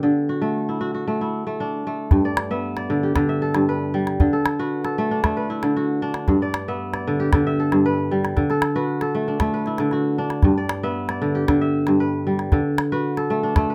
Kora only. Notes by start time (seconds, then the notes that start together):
Already playing: B3 G4 A4
0.03 D3
0.29 F#4
0.42 A3
0.69 E4
0.81 F#4
0.94 F#4
1.07 A3
1.21 E4
1.47 A3
1.60 D4
1.87 A3
2.12 G2
2.25 D5
2.51 B3 E5
2.77 D5
2.90 D3
3.03 G4
3.16 D3
3.29 E5
3.42 A4
3.55 G2
3.69 B4
3.94 G3
4.20 D3
4.33 A4
4.59 F#4 B4
4.85 A4
4.98 A3
5.11 D4
5.24 A3
5.37 B4
5.50 E4
5.63 D3
5.77 F#4
6.02 D4
6.28 G2
6.42 D5
6.68 B3 E5
6.94 D5
7.08 D3
7.20 G4
7.34 D3
7.47 E5
7.60 A4
7.72 G2
7.86 B4
8.11 G3
8.37 D3
8.50 A4
8.76 F#4 B4
9.02 A4
9.15 A3
9.28 D4
9.41 A3
9.54 B4
9.67 E4
9.80 D3
9.93 F#4
10.18 D4
10.44 G2
10.58 D5
10.83 B3 E5
11.10 D5
11.22 D3
11.35 G4
11.48 D3
11.61 E5
11.88 G2
12.00 B4
12.27 G3
12.52 D3
12.92 F#4 B4
13.17 A4
13.30 A3
13.43 D4
13.57 A3
13.70 B4